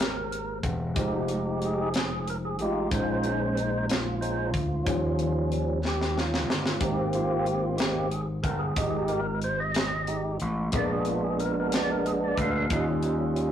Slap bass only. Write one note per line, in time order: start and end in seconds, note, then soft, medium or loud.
0.00 0.59 G#1 medium
0.63 0.93 E1 medium
0.96 2.58 F1 medium
2.58 2.88 A1 medium
2.91 4.53 A#1 medium
4.53 4.84 D2 medium
4.87 6.48 D#2 medium
6.48 6.79 G1 medium
6.81 8.41 G#1 medium
8.43 8.74 G1 medium
8.76 10.36 G#1 medium
10.41 10.71 A1 medium
10.73 12.33 A#1 medium
12.37 12.67 D2 medium
12.70 13.52 D#2 loud